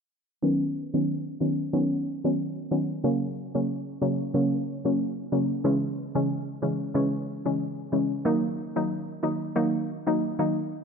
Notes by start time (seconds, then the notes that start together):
0.43 D#3 F#3 B3 C#4
0.94 D#3 F#3 B3 C#4
1.40 D#3 F#3 B3 C#4
1.73 D#3 F#3 B3 C#4
2.24 D#3 F#3 B3 C#4
2.71 D#3 F#3 B3 C#4
3.04 C#3 F#3 A#3 C#4
3.55 C#3 F#3 A#3 C#4
4.01 C#3 F#3 A#3 C#4
4.34 C#3 F#3 A#3 C#4
4.85 C#3 F#3 A#3 C#4
5.32 C#3 F#3 A#3 C#4
5.64 C#3 E3 G#3 C#4
6.15 C#3 E3 G#3 C#4
6.62 C#3 E3 G#3 C#4
6.94 C#3 E3 G#3 C#4
7.45 C#3 E3 G#3 C#4
7.92 C#3 E3 G#3 C#4
8.25 D#3 F#3 A#3 D#4
8.76 D#3 F#3 A#3 D#4
9.23 D#3 F#3 A#3 D#4
9.56 D#3 F#3 A#3 D#4
10.07 D#3 F#3 A#3 D#4
10.39 D#3 F#3 A#3 D#4